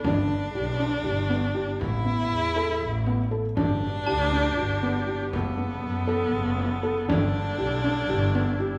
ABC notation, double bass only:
X:1
M:7/8
L:1/8
Q:1/4=119
K:G
V:1 name="Double bass" clef=bass
G,,,2 B,,,2 G,,,3 | A,,,2 E,,2 A,,,3 | G,,,2 D,,2 G,,,3 | F,,,2 F,,2 F,,,3 |
G,,,2 B,,,2 G,,,3 |]